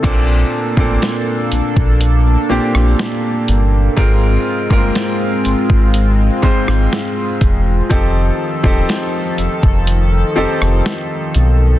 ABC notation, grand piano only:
X:1
M:4/4
L:1/16
Q:1/4=61
K:Bb
V:1 name="Grand piano"
[B,,B,CDA]2 z [B,,B,CDA]4- [B,,B,CDA] z2 [B,,B,CDG]4 z2 | [_A,,_A,CFB]2 z [A,,A,B,CFB]4- [A,,A,B,CFB] z2 [A,,A,CFc]4 z2 | [F,CEGA]2 z [F,CEGA]4- [F,CEGA] z2 [F,CEGA]4 z2 |]